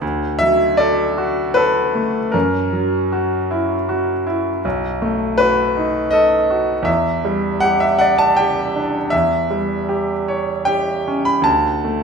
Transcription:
0.01 2.30 D2 medium
0.39 1.03 F#3 medium
0.39 0.79 E5 loud
0.77 1.41 A4 medium
0.77 1.55 D5 medium
1.18 1.80 F#4 medium
1.54 2.19 A4 medium
1.54 2.33 B4 medium
1.95 2.34 A3 soft
2.32 4.60 F#2 medium
2.32 4.26 A#4 medium
2.73 3.35 F#3 medium
3.12 3.74 F#4 medium
3.51 4.12 E4 medium
3.89 4.49 F#4 medium
4.27 4.64 E4 medium
4.65 6.83 B1 medium
5.02 5.61 A3 medium
5.38 5.98 F#4 medium
5.38 6.12 B4 medium
5.77 6.35 D#4 medium
6.11 6.72 A4 medium
6.11 6.86 D#5 medium
6.50 6.87 F#4 medium
6.83 9.06 E2 medium
6.83 7.61 E5 medium
7.25 7.85 G3 medium
7.60 8.23 G4 medium
7.60 7.80 F#5 loud
7.80 8.00 E5 medium
7.99 8.60 D5 medium
7.99 8.18 F#5 medium
8.18 8.37 A5 medium
8.37 8.98 G4 medium
8.37 9.12 G5 medium
8.76 9.13 D4 soft
9.10 11.42 E2 medium
9.10 10.66 E5 medium
9.51 10.13 G3 soft
9.89 10.51 G4 medium
10.28 10.91 C#5 medium
10.65 11.30 G4 medium
10.65 11.25 G5 medium
11.08 11.46 C#4 soft
11.25 11.45 B5 medium
11.42 12.03 D2 medium
11.42 12.03 A5 medium
11.85 12.03 A3 soft

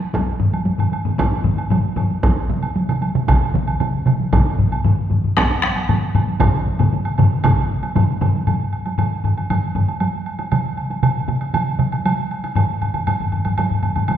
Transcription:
0.00 taiko high medium
0.13 taiko loud
0.13 taiko high medium
0.13 high woodblock soft
0.40 taiko low-mid medium
0.40 taiko high medium
0.53 taiko high medium
0.53 high woodblock soft
0.66 taiko high medium
0.79 taiko low-mid medium
0.79 high woodblock soft
0.92 taiko high medium
0.92 high woodblock soft
1.05 taiko low-mid medium
1.18 taiko loud
1.18 taiko low-mid medium
1.18 taiko high medium
1.18 high woodblock soft
1.44 taiko low-mid medium
1.44 taiko high soft
1.58 taiko high medium
1.58 high woodblock soft
1.70 taiko low-mid loud
1.70 taiko high medium
1.70 high woodblock soft
1.96 taiko low-mid medium
1.96 taiko high soft
1.96 high woodblock soft
2.10 taiko high soft
2.23 taiko loud
2.23 taiko high medium
2.23 high woodblock soft
2.49 taiko mid medium
2.49 taiko high soft
2.63 taiko high soft
2.63 high woodblock soft
2.76 taiko high medium
2.89 taiko mid medium
2.89 high woodblock soft
3.02 taiko high medium
3.02 high woodblock soft
3.15 taiko mid medium
3.28 taiko loud
3.28 taiko mid medium
3.28 taiko high medium
3.28 high woodblock medium
3.54 taiko mid medium
3.54 taiko high soft
3.68 taiko high soft
3.68 high woodblock soft
3.80 taiko mid loud
3.80 taiko high medium
3.80 high woodblock soft
4.06 taiko mid medium
4.06 taiko high soft
4.06 high woodblock soft
4.20 taiko high soft
4.33 taiko loud
4.33 taiko low-mid medium
4.33 taiko high medium
4.33 high woodblock soft
4.59 taiko low-mid medium
4.59 taiko high medium
4.72 taiko high soft
4.72 high woodblock soft
4.84 taiko low-mid loud
4.84 taiko high medium
5.11 taiko low-mid medium
5.11 taiko high medium
5.24 taiko low-mid medium
5.37 taiko rim medium
5.37 taiko loud
5.37 taiko high medium
5.37 high woodblock medium
5.63 taiko rim medium
5.63 taiko high soft
5.76 taiko high soft
5.76 high woodblock soft
5.89 taiko low-mid loud
5.89 taiko high medium
5.89 high woodblock soft
6.15 taiko low-mid loud
6.15 taiko high soft
6.15 high woodblock soft
6.28 taiko high medium
6.40 taiko loud
6.40 taiko low-mid loud
6.40 taiko mid loud
6.40 taiko high medium
6.40 high woodblock medium
6.67 taiko high medium
6.79 taiko low-mid loud
6.79 taiko mid loud
6.79 taiko high soft
6.79 high woodblock soft
6.93 taiko high medium
7.05 high woodblock soft
7.18 taiko low-mid loud
7.18 taiko mid medium
7.18 taiko high medium
7.18 high woodblock soft
7.44 taiko loud
7.44 taiko low-mid medium
7.44 taiko mid medium
7.44 taiko high medium
7.44 high woodblock medium
7.70 taiko high soft
7.83 taiko high soft
7.83 high woodblock soft
7.95 taiko low-mid loud
7.95 taiko mid medium
7.95 taiko high medium
7.95 high woodblock soft
8.21 taiko low-mid loud
8.21 taiko mid medium
8.21 taiko high soft
8.21 high woodblock soft
8.34 taiko high soft
8.47 taiko low-mid medium
8.47 taiko high medium
8.47 high woodblock soft
8.73 high woodblock soft
8.86 taiko high soft
8.86 high woodblock soft
8.98 taiko low-mid medium
8.98 taiko high medium
8.98 high woodblock soft
9.24 taiko low-mid medium
9.24 high woodblock soft
9.37 taiko high soft
9.37 high woodblock soft
9.50 taiko low-mid medium
9.50 taiko high medium
9.50 high woodblock soft
9.75 taiko low-mid medium
9.75 taiko high soft
9.75 high woodblock soft
9.88 taiko high soft
9.88 high woodblock soft
10.00 taiko high medium
10.00 high woodblock soft
10.26 high woodblock soft
10.39 taiko high medium
10.39 high woodblock soft
10.52 taiko mid medium
10.52 taiko high medium
10.52 high woodblock soft
10.77 high woodblock soft
10.91 taiko high soft
10.91 high woodblock soft
11.03 taiko mid medium
11.03 taiko high medium
11.03 high woodblock soft
11.28 taiko mid medium
11.28 high woodblock soft
11.41 taiko high soft
11.41 high woodblock soft
11.54 taiko mid medium
11.54 taiko high medium
11.54 high woodblock medium
11.79 taiko mid medium
11.79 taiko high soft
11.79 high woodblock soft
11.92 taiko high medium
11.92 high woodblock soft
12.05 taiko high medium
12.05 high woodblock medium
12.31 high woodblock soft
12.44 taiko high medium
12.44 high woodblock soft
12.55 taiko low-mid medium
12.55 taiko high medium
12.55 high woodblock soft
12.81 taiko low-mid medium
12.81 high woodblock soft
12.94 taiko low-mid medium
12.94 taiko high soft
12.94 high woodblock soft
13.07 taiko low-mid medium
13.07 taiko high medium
13.07 high woodblock soft
13.20 taiko low-mid medium
13.32 taiko low-mid medium
13.32 high woodblock soft
13.45 taiko low-mid medium
13.45 taiko high soft
13.45 high woodblock soft
13.57 taiko low-mid medium
13.57 taiko high medium
13.57 high woodblock medium
13.71 taiko low-mid medium
13.83 taiko low-mid medium
13.83 taiko high soft
13.83 high woodblock soft
13.96 taiko low-mid medium
13.96 taiko high soft
13.96 high woodblock soft
14.08 taiko low-mid medium
14.08 taiko high medium
14.08 high woodblock soft

